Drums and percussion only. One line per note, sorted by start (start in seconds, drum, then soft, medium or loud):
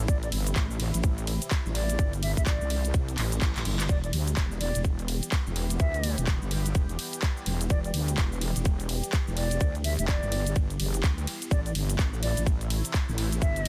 0.08 kick loud
0.08 closed hi-hat medium
0.08 shaker medium
0.23 closed hi-hat soft
0.23 shaker soft
0.32 open hi-hat loud
0.32 ride medium
0.47 closed hi-hat medium
0.47 shaker medium
0.56 kick loud
0.56 clap loud
0.56 closed hi-hat medium
0.56 shaker medium
0.71 shaker soft
0.80 open hi-hat loud
0.80 ride medium
0.94 closed hi-hat medium
0.94 shaker medium
1.04 kick loud
1.04 closed hi-hat medium
1.04 shaker medium
1.18 closed hi-hat soft
1.18 shaker soft
1.27 open hi-hat loud
1.27 ride medium
1.42 closed hi-hat medium
1.42 shaker medium
1.51 kick loud
1.51 clap loud
1.51 closed hi-hat medium
1.51 shaker medium
1.66 shaker soft
1.75 open hi-hat loud
1.75 ride medium
1.90 closed hi-hat medium
1.90 shaker medium
1.99 kick loud
1.99 closed hi-hat medium
1.99 shaker medium
2.13 closed hi-hat soft
2.13 shaker soft
2.23 open hi-hat loud
2.23 ride medium
2.37 kick medium
2.37 closed hi-hat medium
2.37 shaker medium
2.46 kick loud
2.46 clap loud
2.46 closed hi-hat medium
2.46 shaker medium
2.61 shaker soft
2.70 open hi-hat loud
2.70 ride medium
2.85 closed hi-hat medium
2.85 shaker medium
2.94 kick loud
2.94 closed hi-hat medium
2.94 shaker medium
3.08 closed hi-hat soft
3.08 shaker soft
3.18 clap medium
3.18 open hi-hat loud
3.18 ride medium
3.32 closed hi-hat medium
3.32 shaker medium
3.42 kick loud
3.42 clap loud
3.42 closed hi-hat medium
3.42 shaker medium
3.56 clap medium
3.56 closed hi-hat soft
3.56 shaker soft
3.65 open hi-hat loud
3.65 ride medium
3.80 clap loud
3.80 closed hi-hat medium
3.80 shaker medium
3.89 kick loud
3.89 closed hi-hat medium
3.89 shaker medium
4.04 closed hi-hat soft
4.04 shaker soft
4.13 open hi-hat loud
4.13 ride medium
4.28 closed hi-hat medium
4.28 shaker medium
4.37 kick loud
4.37 clap loud
4.37 closed hi-hat medium
4.37 shaker medium
4.52 shaker soft
4.61 open hi-hat loud
4.61 ride medium
4.75 closed hi-hat medium
4.75 shaker medium
4.85 kick loud
4.85 closed hi-hat medium
4.85 shaker medium
4.99 closed hi-hat soft
4.99 shaker soft
5.08 open hi-hat loud
5.08 ride medium
5.23 closed hi-hat medium
5.23 shaker medium
5.32 kick loud
5.32 clap loud
5.32 closed hi-hat medium
5.32 shaker medium
5.47 shaker soft
5.56 open hi-hat loud
5.56 ride medium
5.70 closed hi-hat medium
5.70 shaker medium
5.80 kick loud
5.80 closed hi-hat medium
5.80 shaker medium
5.94 closed hi-hat soft
5.94 shaker soft
6.03 open hi-hat loud
6.03 ride medium
6.18 closed hi-hat medium
6.18 shaker medium
6.27 kick loud
6.27 clap loud
6.27 closed hi-hat medium
6.27 shaker medium
6.42 shaker soft
6.51 open hi-hat loud
6.51 ride medium
6.66 closed hi-hat medium
6.66 shaker medium
6.75 kick loud
6.75 closed hi-hat medium
6.75 shaker medium
6.89 closed hi-hat soft
6.89 shaker soft
6.99 open hi-hat loud
6.99 ride medium
7.13 closed hi-hat medium
7.13 shaker medium
7.22 kick loud
7.22 clap loud
7.22 closed hi-hat medium
7.22 shaker medium
7.37 shaker soft
7.46 open hi-hat loud
7.46 ride medium
7.61 closed hi-hat medium
7.61 shaker medium
7.70 kick loud
7.70 closed hi-hat medium
7.70 shaker medium
7.84 closed hi-hat soft
7.84 shaker soft
7.94 open hi-hat loud
7.94 ride medium
8.08 closed hi-hat medium
8.08 shaker medium
8.18 kick loud
8.18 clap loud
8.18 closed hi-hat medium
8.18 shaker medium
8.32 shaker soft
8.41 open hi-hat loud
8.41 ride medium
8.56 closed hi-hat soft
8.56 shaker medium
8.65 kick loud
8.65 closed hi-hat medium
8.65 shaker medium
8.80 closed hi-hat soft
8.80 shaker soft
8.89 open hi-hat loud
8.89 ride medium
9.03 closed hi-hat medium
9.03 shaker medium
9.13 kick loud
9.13 clap loud
9.13 closed hi-hat medium
9.13 shaker medium
9.28 shaker soft
9.37 open hi-hat loud
9.37 ride medium
9.51 closed hi-hat medium
9.51 shaker medium
9.61 kick loud
9.61 closed hi-hat medium
9.61 shaker medium
9.75 closed hi-hat soft
9.75 shaker soft
9.84 open hi-hat loud
9.84 ride medium
9.99 closed hi-hat medium
9.99 shaker medium
10.08 kick loud
10.08 clap loud
10.08 closed hi-hat medium
10.08 shaker medium
10.23 shaker soft
10.32 open hi-hat loud
10.32 ride medium
10.47 closed hi-hat soft
10.47 shaker medium
10.56 kick loud
10.56 closed hi-hat medium
10.56 shaker medium
10.70 closed hi-hat soft
10.70 shaker soft
10.80 open hi-hat loud
10.80 ride medium
10.94 closed hi-hat soft
10.94 shaker medium
11.03 kick loud
11.03 clap loud
11.03 closed hi-hat medium
11.03 shaker medium
11.18 closed hi-hat soft
11.18 shaker soft
11.27 open hi-hat loud
11.27 ride medium
11.42 closed hi-hat medium
11.42 shaker medium
11.51 kick loud
11.51 closed hi-hat medium
11.51 shaker medium
11.66 closed hi-hat soft
11.66 shaker soft
11.75 open hi-hat loud
11.75 ride medium
11.90 closed hi-hat medium
11.90 shaker medium
11.99 kick loud
11.99 clap loud
11.99 closed hi-hat medium
11.99 shaker medium
12.14 shaker soft
12.23 open hi-hat loud
12.23 ride medium
12.37 closed hi-hat soft
12.37 shaker medium
12.46 kick loud
12.46 closed hi-hat medium
12.46 shaker medium
12.61 closed hi-hat soft
12.61 shaker soft
12.70 open hi-hat loud
12.70 ride medium
12.85 closed hi-hat medium
12.85 shaker medium
12.94 kick loud
12.94 clap loud
12.94 closed hi-hat medium
12.94 shaker medium
13.09 shaker soft
13.18 open hi-hat loud
13.18 ride medium
13.32 closed hi-hat medium
13.32 shaker medium
13.42 kick loud
13.42 closed hi-hat medium
13.42 shaker medium
13.56 closed hi-hat soft
13.56 shaker soft